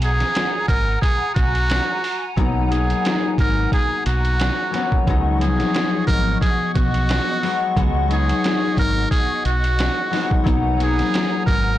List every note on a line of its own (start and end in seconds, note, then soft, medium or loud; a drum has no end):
0.00 0.23 B1 loud
0.00 5.03 F#5 medium
0.00 5.03 G#5 medium
0.00 5.03 A#5 medium
0.00 closed hi-hat medium
0.05 0.66 G#4 medium
0.20 snare soft
0.20 closed hi-hat medium
0.35 snare loud
0.35 snare medium
0.35 closed hi-hat medium
0.68 0.96 G#1 medium
0.68 0.98 A#4 loud
0.68 kick medium
0.68 closed hi-hat medium
1.01 1.32 G#4 medium
1.01 kick loud
1.01 closed hi-hat medium
1.35 1.79 B1 medium
1.35 2.32 F#4 medium
1.35 kick loud
1.35 closed hi-hat medium
1.55 closed hi-hat soft
1.70 snare loud
1.70 closed hi-hat loud
2.04 open hi-hat medium
2.36 2.92 B1 loud
2.36 2.67 F#3 medium
2.36 2.68 A#3 medium
2.36 2.69 B3 medium
2.36 2.70 D#4 loud
2.36 kick loud
2.36 closed hi-hat medium
2.68 4.69 F#3 medium
2.68 4.71 A#3 medium
2.68 4.72 B3 medium
2.68 5.10 D#4 medium
2.68 3.34 G#4 medium
2.68 closed hi-hat medium
2.90 closed hi-hat medium
3.05 snare loud
3.05 closed hi-hat medium
3.38 3.66 G#1 medium
3.38 3.69 A#4 medium
3.38 kick loud
3.38 closed hi-hat medium
3.72 4.03 G#4 medium
3.72 kick loud
3.72 closed hi-hat medium
4.06 4.49 B1 medium
4.06 5.03 F#4 medium
4.06 closed hi-hat medium
4.25 closed hi-hat soft
4.40 snare loud
4.40 closed hi-hat loud
4.71 5.06 F#3 medium
4.71 5.04 A#3 medium
4.71 5.04 B3 medium
4.71 5.05 C#4 medium
4.71 snare soft
4.71 closed hi-hat medium
4.92 kick medium
5.07 5.62 C#2 loud
5.07 5.43 F#3 medium
5.07 5.38 G#3 medium
5.07 10.42 B3 medium
5.07 5.39 B3 medium
5.07 5.40 D#4 loud
5.07 10.42 D#5 medium
5.07 11.78 F#5 medium
5.07 10.42 C#6 medium
5.07 kick loud
5.07 closed hi-hat medium
5.38 9.28 F3 medium
5.38 7.42 G#3 medium
5.38 7.44 B3 medium
5.38 8.10 D#4 medium
5.38 6.04 G#4 medium
5.38 closed hi-hat medium
5.44 7.41 F#3 medium
5.60 snare soft
5.60 closed hi-hat medium
5.75 snare loud
5.75 snare medium
5.75 closed hi-hat medium
6.07 6.35 G#1 medium
6.07 6.38 A#4 medium
6.07 kick medium
6.07 closed hi-hat medium
6.41 6.72 G#4 medium
6.41 kick loud
6.41 closed hi-hat medium
6.75 7.18 B1 loud
6.75 7.72 F#4 medium
6.75 kick loud
6.75 closed hi-hat medium
6.94 closed hi-hat soft
7.09 snare loud
7.09 closed hi-hat loud
7.42 7.76 F#3 medium
7.42 7.77 G#3 medium
7.42 7.75 B3 medium
7.42 7.75 F#4 medium
7.42 open hi-hat medium
7.77 8.32 C#2 loud
7.77 8.06 F#3 medium
7.77 8.07 G#3 medium
7.77 8.08 B3 medium
7.77 8.09 F#4 loud
7.77 kick loud
7.77 closed hi-hat loud
8.08 10.09 F#3 medium
8.08 10.10 G#3 medium
8.08 10.12 B3 medium
8.08 10.13 D#4 medium
8.08 closed hi-hat medium
8.12 8.75 G#4 medium
8.29 closed hi-hat medium
8.44 snare loud
8.44 closed hi-hat medium
8.77 9.05 G#1 medium
8.77 9.09 A#4 loud
8.77 kick medium
8.77 closed hi-hat medium
9.11 9.41 G#4 medium
9.11 kick loud
9.11 closed hi-hat medium
9.45 9.88 B1 medium
9.45 10.43 F#4 medium
9.45 closed hi-hat medium
9.64 closed hi-hat soft
9.79 snare loud
9.79 closed hi-hat loud
10.10 10.42 F#3 medium
10.10 10.51 G#3 medium
10.10 10.44 B3 medium
10.10 10.44 D#4 medium
10.10 snare soft
10.10 open hi-hat medium
10.31 kick medium
10.44 11.01 B1 loud
10.44 10.75 F#3 loud
10.44 10.76 A#3 medium
10.44 10.77 B3 medium
10.44 10.78 D#4 loud
10.44 11.78 G#5 medium
10.44 11.78 A#5 medium
10.44 kick loud
10.44 closed hi-hat loud
10.77 11.78 F#3 medium
10.77 11.78 A#3 medium
10.77 11.78 B3 medium
10.77 11.78 F#4 medium
10.77 closed hi-hat medium
10.84 11.45 G#4 medium
10.99 snare soft
10.99 closed hi-hat medium
11.14 snare loud
11.14 snare medium
11.14 closed hi-hat medium
11.46 11.75 G#1 medium
11.46 11.77 A#4 loud
11.46 kick medium
11.46 closed hi-hat medium